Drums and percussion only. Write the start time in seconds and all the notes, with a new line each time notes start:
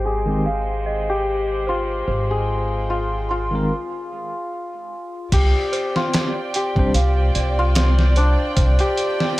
5.32 kick, closed hi-hat, crash
5.73 closed hi-hat
5.96 snare
6.14 snare, closed hi-hat
6.54 closed hi-hat
6.76 kick
6.94 closed hi-hat
7.35 closed hi-hat
7.75 snare, closed hi-hat
7.99 snare
8.16 closed hi-hat
8.57 kick, closed hi-hat
8.79 closed hi-hat
8.97 closed hi-hat
9.20 snare